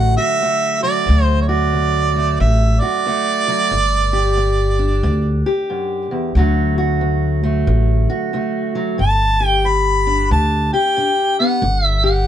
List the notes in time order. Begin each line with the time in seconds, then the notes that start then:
Already playing: A1 D2 D3 F#3 A3 F#4 F#5
0.17 F#4 E5
0.42 D2 A3
0.83 F#3 D5
1.07 D2
1.24 C5
1.41 C#5
1.48 F#4 D5
1.73 D2
2.16 A3
2.40 A1 D2 E5
2.80 F#4 D5
3.06 D2 A3
3.48 F#3
3.71 G1 G2
4.13 G4
4.37 G2
4.79 D4
5.03 D2 G2
5.46 G4
5.70 F#2
6.11 E2
6.35 D2 D3 F#3 A3 F#4
6.78 F#4
7.01 D2
7.44 A3
7.67 A1 D2
8.10 F#4
8.33 D2 A3
8.75 F#3
8.98 G1 G2 A5
9.40 G4
9.46 G5
9.65 G2 B5
10.07 D4
10.31 D2 G2 A5
10.73 G4 G5
10.97 G2 D4
11.39 B3 F#5
11.62 G1 G2
11.85 E5
12.04 G4 F#5